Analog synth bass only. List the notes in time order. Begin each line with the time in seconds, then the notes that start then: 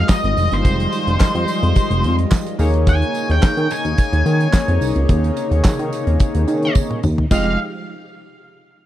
0.24 G#1
0.37 F1
0.52 G1
0.65 F1
1.07 F1
1.21 F2
1.35 F2
1.63 F2
1.90 F1
2.04 F2
2.59 D#2
3.30 D#2
3.43 D#3
3.57 D#3
3.85 D#2
4.13 D#2
4.26 D#3
4.68 F2
4.81 C2
4.96 C#2
5.09 D#2
5.51 D#2
5.65 D#3
5.79 D#3
6.07 D#2
6.35 D#2
6.48 D#3
7.04 D#2
7.31 F1